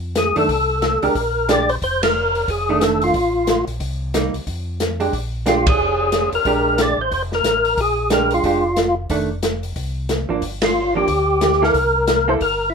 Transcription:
0.00 0.32 F2 medium
0.15 0.36 G#4 medium
0.15 snare medium
0.15 closed hi-hat soft
0.36 0.48 F#2 medium
0.36 0.48 D#3 medium
0.36 0.48 A3 medium
0.36 0.48 D4 medium
0.36 1.06 A4 medium
0.36 open hi-hat soft
0.49 0.99 C2 medium
0.49 kick soft
0.49 open hi-hat soft
0.82 snare medium
0.82 closed hi-hat soft
1.02 1.09 C2 soft
1.02 1.14 G#3 soft
1.02 1.15 D4 medium
1.02 1.15 G4 medium
1.02 1.51 A#4 medium
1.02 open hi-hat soft
1.15 1.78 A#1 medium
1.15 kick soft
1.15 open hi-hat soft
1.49 1.67 G#3 soft
1.49 1.67 D4 medium
1.49 1.68 G4 medium
1.49 1.71 D5 medium
1.49 snare medium
1.49 closed hi-hat soft
1.69 1.75 C5 medium
1.69 open hi-hat soft
1.82 2.45 F1 medium
1.82 2.02 C5 medium
1.82 kick soft
1.82 open hi-hat soft
2.03 2.50 A#4 medium
2.03 snare medium
2.03 ride medium
2.35 open hi-hat soft
2.48 3.11 F1 medium
2.48 2.83 G#4 medium
2.48 kick soft
2.48 open hi-hat soft
2.69 3.12 D#3 medium
2.69 3.13 A3 medium
2.69 3.13 D4 medium
2.81 3.03 A4 medium
2.81 snare medium
2.81 closed hi-hat soft
3.01 3.65 F4 medium
3.01 open hi-hat soft
3.14 3.64 A1 medium
3.14 kick soft
3.14 open hi-hat soft
3.47 snare medium
3.47 closed hi-hat soft
3.67 3.80 A#1 medium
3.67 open hi-hat soft
3.80 4.30 C2 medium
3.80 kick soft
3.80 open hi-hat soft
4.14 4.32 G3 medium
4.14 4.33 A#3 medium
4.14 4.33 D#4 medium
4.14 snare medium
4.14 closed hi-hat soft
4.33 4.40 C2 soft
4.33 open hi-hat soft
4.47 5.10 F2 medium
4.47 kick soft
4.47 open hi-hat soft
4.80 snare medium
4.80 closed hi-hat soft
5.00 5.12 G#3 soft
5.00 5.12 D4 soft
5.00 5.12 G4 medium
5.00 open hi-hat soft
5.13 5.76 A#1 medium
5.13 kick soft
5.13 open hi-hat soft
5.46 5.64 G#3 soft
5.46 5.65 D4 medium
5.46 5.66 F4 medium
5.46 5.65 G4 medium
5.46 snare medium
5.46 closed hi-hat soft
5.67 6.30 G#4 medium
5.67 kick medium
5.67 ride medium
5.79 6.29 F1 medium
6.12 snare medium
6.12 closed hi-hat soft
6.32 6.39 F1 soft
6.32 6.81 A#4 medium
6.32 open hi-hat soft
6.45 6.95 A#1 medium
6.45 6.95 G#3 medium
6.45 6.96 D4 medium
6.45 6.96 G4 medium
6.45 kick soft
6.45 open hi-hat soft
6.78 7.01 D5 medium
6.78 snare medium
6.78 closed hi-hat medium
6.98 7.10 A1 medium
6.98 7.13 C5 medium
7.11 7.42 F1 medium
7.11 7.23 C5 medium
7.11 kick soft
7.11 open hi-hat soft
7.32 7.80 A#4 medium
7.32 snare soft
7.44 7.75 A1 medium
7.44 snare medium
7.44 closed hi-hat soft
7.65 open hi-hat soft
7.77 8.40 A#1 medium
7.77 8.10 G#4 medium
7.77 kick soft
7.77 open hi-hat soft
8.10 8.43 G#3 soft
8.10 8.43 D4 soft
8.10 8.44 G4 medium
8.10 8.33 A#4 medium
8.10 snare medium
8.10 closed hi-hat soft
8.31 8.95 F4 medium
8.31 open hi-hat soft
8.43 9.07 F1 medium
8.43 8.63 G#3 soft
8.43 8.63 D4 soft
8.43 8.63 G4 medium
8.43 kick soft
8.43 open hi-hat soft
8.76 snare medium
8.76 closed hi-hat soft
9.10 9.73 F1 medium
9.10 9.29 D#3 medium
9.10 9.29 A3 medium
9.10 9.29 D4 medium
9.10 kick soft
9.10 open hi-hat soft
9.43 snare medium
9.43 closed hi-hat medium
9.63 open hi-hat soft
9.76 10.26 C2 medium
9.76 kick soft
9.76 open hi-hat soft
10.09 snare medium
10.09 closed hi-hat soft
10.29 10.41 G#1 medium
10.29 10.41 F3 medium
10.29 10.41 A#3 medium
10.29 10.41 D4 medium
10.42 11.05 G1 medium
10.42 kick soft
10.42 open hi-hat soft
10.62 10.94 F4 medium
10.62 snare medium
10.62 ride medium
10.95 11.07 F3 medium
10.95 11.07 A#3 medium
10.95 11.08 D4 medium
10.95 11.64 G4 loud
11.08 11.71 D2 medium
11.08 kick soft
11.08 open hi-hat soft
11.41 snare medium
11.41 closed hi-hat soft
11.53 snare soft
11.62 11.73 A#3 medium
11.62 11.74 E4 medium
11.62 11.74 A4 medium
11.62 12.30 A#4 loud
11.62 snare soft
11.74 12.37 C2 medium
11.74 kick soft
11.74 open hi-hat soft
12.07 snare medium
12.07 closed hi-hat soft
12.28 12.39 A#3 medium
12.28 12.40 E4 medium
12.28 12.40 A4 medium
12.28 12.35 C5 loud
12.40 12.74 G1 medium
12.40 12.70 A#4 medium
12.40 kick soft
12.40 open hi-hat soft
12.70 12.74 E4 medium

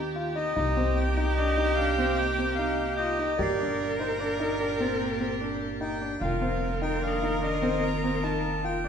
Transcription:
0.00 0.52 D#2 medium
0.00 0.53 D#3 medium
0.00 0.52 A#3 medium
0.00 0.53 G4 medium
0.00 0.55 G4 loud
0.16 0.27 F4 medium
0.36 0.48 D#4 medium
0.36 0.98 D#5 medium
0.55 3.35 C2 medium
0.55 3.37 C3 medium
0.55 3.37 A#3 medium
0.55 0.68 D#4 medium
0.55 3.37 D#4 medium
0.55 3.35 G4 loud
0.77 1.00 C4 medium
0.96 1.34 G5 medium
1.17 1.29 D#4 medium
1.35 1.49 D4 medium
1.35 1.78 D#5 medium
1.57 1.69 D#4 medium
1.75 1.89 D4 medium
1.75 2.18 F5 medium
1.98 2.22 C4 medium
2.15 2.54 G5 loud
2.38 2.50 C4 medium
2.55 2.82 D#4 medium
2.55 2.94 F5 medium
2.96 3.11 F4 medium
2.96 3.39 D#5 medium
2.96 3.56 G6 medium
3.19 3.31 D#4 medium
3.37 6.18 G1 medium
3.37 6.19 A#2 medium
3.37 6.19 A#3 medium
3.37 6.19 G4 medium
3.37 3.51 G4 medium
3.37 5.97 A#4 loud
3.37 3.94 D5 medium
3.43 4.57 C7 medium
3.59 3.82 D4 medium
3.99 4.11 D#4 medium
3.99 4.20 C5 medium
4.20 4.32 D4 medium
4.20 4.76 D5 medium
4.40 4.52 D#4 medium
4.60 4.72 D4 medium
4.80 5.04 C4 medium
4.80 5.95 A6 medium
5.21 5.32 C4 medium
5.41 5.64 D4 medium
5.80 5.93 D#4 medium
5.80 6.23 G5 medium
6.02 6.13 D4 medium
6.21 8.88 F1 medium
6.21 8.88 D#3 medium
6.21 8.88 A#3 medium
6.21 6.34 F4 medium
6.21 8.88 F4 medium
6.21 8.88 A#4 medium
6.21 6.78 F5 medium
6.42 6.65 C4 medium
6.82 6.94 D#4 medium
6.82 7.03 G5 medium
7.02 7.14 D4 medium
7.02 7.40 F5 medium
7.08 8.22 D#6 medium
7.22 7.34 D#4 medium
7.42 7.54 D4 medium
7.42 7.84 D#5 medium
7.62 7.86 C4 medium
7.82 8.24 A#5 loud
8.04 8.15 C4 medium
8.23 8.47 D#4 medium
8.23 8.65 A5 medium
8.64 8.76 F4 medium
8.64 8.88 G5 medium
8.84 8.88 D4 medium

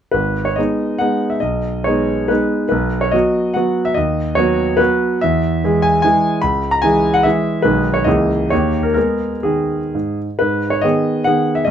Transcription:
0.12 0.57 G#1 soft
0.12 0.45 B4 medium
0.45 0.57 C#5 medium
0.56 0.97 G#3 soft
0.56 0.98 B3 soft
0.56 0.98 D#4 soft
0.56 1.00 D#5 medium
0.98 1.38 G#3 soft
0.98 1.38 B3 soft
0.98 1.38 D#4 soft
0.98 1.31 F#5 medium
1.30 1.41 E5 soft
1.40 1.85 B1 soft
1.40 1.85 D#5 medium
1.84 2.26 G#3 soft
1.84 2.26 B3 soft
1.84 2.26 D#4 soft
1.84 2.29 C#5 medium
2.28 2.67 G#3 soft
2.28 2.67 B3 soft
2.28 2.67 D#4 soft
2.28 2.67 B4 medium
2.69 3.12 B1 soft
2.69 3.01 B4 medium
3.01 3.13 C#5 medium
3.11 3.53 F#3 soft
3.11 3.53 B3 soft
3.11 3.53 F#4 soft
3.11 3.55 D#5 medium
3.54 3.93 F#3 soft
3.54 3.93 B3 soft
3.54 3.93 F#4 soft
3.54 3.86 F#5 medium
3.85 3.96 E5 medium
3.94 4.36 D#2 soft
3.94 4.36 D#5 medium
4.35 4.75 F#3 soft
4.35 4.75 B3 soft
4.35 4.75 F#4 soft
4.35 4.78 C#5 medium
4.77 5.19 F#3 soft
4.77 5.19 B3 soft
4.77 5.19 F#4 soft
4.77 5.21 B4 medium
5.21 5.62 E2 soft
5.21 5.83 E5 medium
5.64 6.01 E3 soft
5.64 6.01 G#3 soft
5.64 6.01 G#4 soft
5.82 6.01 G#5 medium
6.02 6.39 E3 soft
6.02 6.40 G#3 soft
6.02 6.40 G#4 soft
6.02 6.42 G#5 medium
6.42 6.82 C#2 soft
6.42 6.72 B5 medium
6.71 6.83 A#5 medium
6.82 7.21 E3 soft
6.82 7.21 G#3 soft
6.82 7.22 G#4 soft
6.82 7.14 G#5 medium
7.14 7.24 F#5 medium
7.23 7.60 E3 soft
7.23 7.61 G#3 soft
7.23 7.61 G#4 soft
7.23 7.63 E5 medium
7.62 8.05 B1 soft
7.62 8.03 D#3 soft
7.62 8.03 G#3 soft
7.62 8.03 G#4 soft
7.62 7.94 B4 medium
7.94 8.06 C#5 medium
8.04 8.51 C#2 medium
8.04 8.48 E3 soft
8.04 8.48 A#3 soft
8.04 8.48 G#4 soft
8.04 8.51 D#5 medium
8.50 8.95 D#2 soft
8.50 8.92 D#3 soft
8.50 8.93 A#3 soft
8.50 8.93 G4 soft
8.50 8.84 C#5 medium
8.83 8.93 A#4 soft
8.94 9.31 G#3 soft
8.94 9.35 B3 soft
8.94 9.35 G#4 soft
8.94 9.44 A#4 medium
9.43 9.80 D#3 soft
9.43 10.17 G#4 soft
9.95 10.27 G#2 soft
10.39 10.83 G#2 soft
10.39 10.72 B4 medium
10.70 10.83 C#5 medium
10.81 11.22 D#3 soft
10.81 11.23 B3 soft
10.81 11.23 G#4 soft
10.81 11.25 D#5 medium
11.24 11.63 D#3 soft
11.24 11.62 B3 soft
11.24 11.63 G#4 soft
11.24 11.55 F#5 medium
11.55 11.66 E5 medium
11.65 11.71 B1 soft
11.65 11.71 D#5 medium

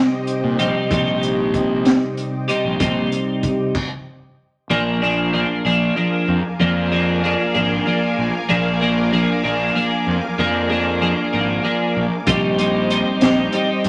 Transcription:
0.00 0.57 C3 medium
0.00 0.61 G3 medium
0.00 0.60 C4 medium
0.00 0.59 D#4 medium
0.00 0.59 G4 medium
0.00 3.72 C5 medium
0.00 3.72 D#5 medium
0.00 3.72 G5 medium
0.00 3.71 D6 medium
0.27 closed hi-hat medium
0.44 0.56 A#2 medium
0.59 0.72 A#1 medium
0.59 0.89 C3 medium
0.59 0.91 G3 medium
0.59 0.92 C4 medium
0.59 0.93 D#4 medium
0.59 0.94 G4 medium
0.59 closed hi-hat medium
0.91 1.91 A#1 medium
0.91 2.47 C3 medium
0.91 2.47 G3 medium
0.91 2.48 C4 medium
0.91 2.48 D#4 medium
0.91 2.47 G4 medium
0.91 kick loud
0.91 closed hi-hat medium
1.23 closed hi-hat medium
1.54 kick medium
1.54 closed hi-hat medium
1.85 snare loud
1.85 closed hi-hat medium
2.17 closed hi-hat medium
2.48 2.78 C3 medium
2.48 2.79 G3 medium
2.48 2.79 C4 medium
2.48 2.79 D#4 medium
2.48 2.78 G4 medium
2.48 closed hi-hat medium
2.64 2.77 A#1 medium
2.79 3.05 A#1 medium
2.79 3.73 C3 medium
2.79 3.73 G3 medium
2.79 3.74 C4 medium
2.79 3.74 D#4 medium
2.79 3.74 G4 medium
2.79 kick loud
2.79 closed hi-hat medium
3.12 closed hi-hat medium
3.43 kick medium
3.43 closed hi-hat medium
3.75 kick medium
3.75 crash medium
4.69 5.45 A#1 loud
4.69 5.02 F3 medium
4.69 5.01 A#3 medium
4.69 5.01 D4 medium
4.69 5.01 G#4 medium
4.69 12.23 A#4 medium
4.69 12.23 F5 medium
4.69 12.23 G#5 medium
4.69 13.89 D6 medium
5.02 5.32 F3 medium
5.02 5.32 A#3 medium
5.02 5.33 D4 medium
5.02 5.33 G#4 medium
5.33 5.65 F3 medium
5.33 5.65 A#3 medium
5.33 5.64 D4 medium
5.33 5.64 G#4 medium
5.65 5.90 A#1 medium
5.65 5.95 F3 medium
5.65 5.95 A#3 medium
5.65 5.95 D4 medium
5.65 5.96 G#4 medium
5.96 6.37 F3 medium
5.96 6.37 A#3 medium
5.96 6.37 D4 medium
5.96 6.38 G#4 medium
6.28 6.40 F2 medium
6.60 7.35 F2 loud
6.60 6.91 F3 medium
6.60 6.91 A#3 medium
6.60 6.91 D4 medium
6.60 6.91 G#4 medium
6.92 7.22 F3 medium
6.92 7.23 A#3 medium
6.92 7.23 D4 medium
6.92 7.23 G#4 medium
7.24 7.54 F3 medium
7.24 7.54 A#3 medium
7.24 7.54 D4 medium
7.24 7.53 G#4 medium
7.54 7.80 G#1 medium
7.54 7.85 F3 medium
7.54 7.85 A#3 medium
7.54 7.86 D4 medium
7.54 7.86 G#4 medium
7.86 8.27 F3 medium
7.86 8.27 A#3 medium
7.86 8.27 D4 medium
7.86 8.27 G#4 medium
8.18 8.30 A#1 medium
8.49 9.24 A#1 medium
8.49 8.80 F3 medium
8.49 8.80 A#3 medium
8.49 8.80 D4 medium
8.49 8.80 G#4 medium
8.81 9.11 F3 medium
8.81 9.11 A#3 medium
8.81 9.11 D4 medium
8.81 9.12 G#4 medium
9.12 9.44 F3 medium
9.12 9.44 A#3 medium
9.12 9.43 D4 medium
9.12 9.43 G#4 medium
9.44 9.69 A#1 medium
9.44 9.74 F3 medium
9.44 9.74 A#3 medium
9.44 9.75 D4 medium
9.44 9.75 G#4 medium
9.75 10.16 F3 medium
9.75 10.16 A#3 medium
9.75 10.17 D4 medium
9.75 10.17 G#4 medium
10.07 10.19 F2 medium
10.38 11.13 F2 loud
10.38 10.70 F3 medium
10.38 10.69 A#3 medium
10.38 10.69 D4 medium
10.38 10.69 G#4 medium
10.70 11.00 F3 medium
10.70 11.00 A#3 medium
10.70 11.01 D4 medium
10.70 11.01 G#4 medium
11.01 11.32 F3 medium
11.01 11.32 A#3 medium
11.01 11.32 D4 medium
11.01 11.31 G#4 medium
11.33 11.58 G#1 medium
11.33 11.62 F3 medium
11.33 11.63 A#3 medium
11.33 11.63 D4 medium
11.33 11.63 G#4 medium
11.63 12.05 F3 medium
11.63 12.05 A#3 medium
11.63 12.05 D4 medium
11.63 12.05 G#4 medium
11.96 12.09 A#1 loud
12.27 13.02 A#1 loud
12.27 12.59 G3 medium
12.27 12.58 C4 medium
12.27 12.58 D#4 medium
12.27 12.58 G4 medium
12.27 13.89 C5 medium
12.27 13.89 D#5 medium
12.27 13.89 G5 medium
12.27 kick loud
12.27 closed hi-hat medium
12.58 12.89 G3 medium
12.58 12.90 C4 medium
12.58 12.90 D#4 medium
12.58 12.90 G4 medium
12.58 closed hi-hat medium
12.90 13.22 G3 medium
12.90 13.21 C4 medium
12.90 13.21 D#4 medium
12.90 13.21 G4 medium
12.90 closed hi-hat medium
13.21 13.47 A#1 medium
13.21 13.52 G3 medium
13.21 13.53 C4 medium
13.21 13.53 D#4 medium
13.21 13.53 G4 medium
13.21 snare medium
13.21 closed hi-hat medium
13.52 13.89 G3 medium
13.52 13.89 C4 medium
13.52 13.89 D#4 medium
13.52 13.89 G4 medium
13.52 closed hi-hat medium
13.84 13.89 G2 medium
13.84 closed hi-hat medium

